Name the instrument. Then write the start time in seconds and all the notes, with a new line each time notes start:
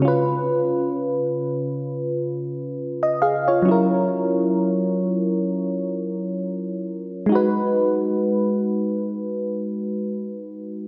fm electric piano
0.00 C#3 C#4
0.05 F4 B4
3.03 D#5
3.22 G#4 F5
3.48 F4 C#5
3.62 F#3 C#4
3.68 E4 A#4
7.26 G#3 D#4
7.32 F#4 B4